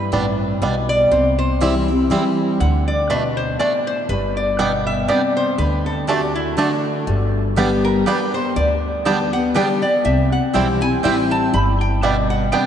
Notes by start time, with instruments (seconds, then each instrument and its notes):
Already playing: steel-string acoustic guitar G2, resonator guitar played with a steel bar B4
0.12 upright bass A1, steel-string acoustic guitar A2, five-string banjo G3 B3 D4
0.62 upright bass B1, steel-string acoustic guitar B2, five-string banjo G3 B3 D4
0.89 resonator guitar played with a steel bar D5
1.11 upright bass C2, steel-string acoustic guitar C3, resonator guitar played with a steel bar C5
1.39 resonator guitar played with a steel bar C5
1.61 steel-string acoustic guitar E3 G3 C4 E4, five-string banjo G3 C4 E4
1.88 steel-string acoustic guitar C4 E4
2.10 steel-string acoustic guitar E3 G3 C4 E4, five-string banjo G3 C4 E4
2.60 upright bass D2, steel-string acoustic guitar D3, resonator guitar played with a steel bar F#5
2.88 resonator guitar played with a steel bar D5
3.10 steel-string acoustic guitar B2, five-string banjo A3 D4, resonator guitar played with a steel bar B4
3.37 resonator guitar played with a steel bar C5
3.59 steel-string acoustic guitar A2, five-string banjo A3 D4, resonator guitar played with a steel bar D5
3.87 resonator guitar played with a steel bar C5
4.09 upright bass G1, steel-string acoustic guitar G2, resonator guitar played with a steel bar B4
4.37 resonator guitar played with a steel bar D5
4.59 steel-string acoustic guitar B2, five-string banjo G3 B3 D4, mandolin B3 G4 D5 G5, resonator guitar played with a steel bar F#5
4.87 resonator guitar played with a steel bar E5
5.08 steel-string acoustic guitar C3, five-string banjo G3 B3 D4, mandolin B3 G4 D5 G5, resonator guitar played with a steel bar D5
5.37 resonator guitar played with a steel bar C5
5.58 upright bass D2, steel-string acoustic guitar D3, resonator guitar played with a steel bar B4
5.86 resonator guitar played with a steel bar A4
6.07 steel-string acoustic guitar D3 A3 D4 F#4, mandolin A3 F#4 D5 A5, five-string banjo A3 D4, resonator guitar played with a steel bar G4
6.35 resonator guitar played with a steel bar E4
6.57 steel-string acoustic guitar D3 A3 D4 F#4, mandolin A3 F#4 D5 A5, five-string banjo A3 D4, resonator guitar played with a steel bar F#4
7.07 upright bass G1, steel-string acoustic guitar G2
7.56 steel-string acoustic guitar D3 G3 B3 G4, five-string banjo G3 B3 D4, mandolin B3 G4 D5 G5
7.85 resonator guitar played with a steel bar A#4
8.06 steel-string acoustic guitar D3 G3 B3 G4, five-string banjo G3 B3 D4, mandolin B3 G4 D5 G5, resonator guitar played with a steel bar B4
8.34 steel-string acoustic guitar B3 G4, resonator guitar played with a steel bar C5
8.56 upright bass D2, steel-string acoustic guitar D3, resonator guitar played with a steel bar D5
9.05 steel-string acoustic guitar D3 G3 B3 G4, five-string banjo G3 B3 D4, mandolin B3 G4 D5 G5, resonator guitar played with a steel bar A5
9.33 steel-string acoustic guitar B3 G4, resonator guitar played with a steel bar F#5
9.54 steel-string acoustic guitar D3 G3 B3 G4, five-string banjo G3 B3 D4, mandolin B3 G4 D5 G5, resonator guitar played with a steel bar G5
9.82 steel-string acoustic guitar B3 G4, resonator guitar played with a steel bar D5
10.05 upright bass C2, steel-string acoustic guitar C3, resonator guitar played with a steel bar E5
10.32 resonator guitar played with a steel bar F#5
10.53 upright bass B1, steel-string acoustic guitar E3 G3 C4 E4, five-string banjo G3 C4 E4, mandolin C4 E4 C5 G5, resonator guitar played with a steel bar G5
10.81 steel-string acoustic guitar C4 E4, resonator guitar played with a steel bar G#5
11.03 upright bass A1, steel-string acoustic guitar E3 G3 C4 E4, five-string banjo G3 C4 E4, mandolin C4 E4 C5 G5, resonator guitar played with a steel bar G5
11.31 resonator guitar played with a steel bar A5
11.53 upright bass G1, steel-string acoustic guitar G2, resonator guitar played with a steel bar B5
11.81 resonator guitar played with a steel bar G5
12.02 steel-string acoustic guitar B2, five-string banjo G3 B3 D4, mandolin B3 G4 D5 G5, resonator guitar played with a steel bar E5
12.30 resonator guitar played with a steel bar F#5
12.52 steel-string acoustic guitar C3, five-string banjo G3 B3 D4, mandolin B3 G4 D5 G5, resonator guitar played with a steel bar G5